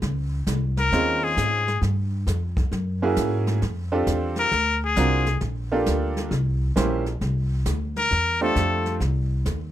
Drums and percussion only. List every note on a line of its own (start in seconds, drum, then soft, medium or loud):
0.02 brush sweep soft
0.02 kick soft
0.02 snare soft
0.47 kick soft
0.47 snare medium
0.47 hi-hat pedal medium
0.77 snare soft
0.92 brush sweep medium
0.92 kick soft
0.92 snare soft
1.37 kick soft
1.37 snare medium
1.37 hi-hat pedal medium
1.68 snare soft
1.82 brush sweep soft
1.82 kick soft
1.82 snare soft
2.27 kick soft
2.27 snare medium
2.27 hi-hat pedal medium
2.57 kick medium
2.57 snare soft
2.72 brush sweep soft
2.72 kick soft
2.72 snare soft
3.16 kick soft
3.16 snare medium
3.16 hi-hat pedal medium
3.47 snare soft
3.62 brush sweep medium
3.62 kick soft
3.62 snare soft
4.07 kick soft
4.07 snare medium
4.07 hi-hat pedal medium
4.36 snare soft
4.52 brush sweep soft
4.52 kick soft
4.52 snare soft
4.96 kick soft
4.96 snare medium
4.96 hi-hat pedal medium
5.26 snare soft
5.41 brush sweep medium
5.41 kick soft
5.41 snare soft
5.86 kick soft
5.86 snare medium
5.86 hi-hat pedal medium
6.17 snare soft
6.31 brush sweep soft
6.31 kick soft
6.31 snare soft
6.76 kick soft
6.76 snare medium
6.76 hi-hat pedal medium
7.06 snare soft
7.21 brush sweep soft
7.21 kick soft
7.21 snare soft
7.66 kick soft
7.66 snare medium
7.66 hi-hat pedal medium
7.96 snare soft
8.11 brush sweep medium
8.11 kick soft
8.11 snare soft
8.56 kick soft
8.56 snare medium
8.56 hi-hat pedal medium
8.86 snare soft
9.00 brush sweep soft
9.00 kick soft
9.00 snare soft
9.45 kick soft
9.45 snare medium
9.45 hi-hat pedal medium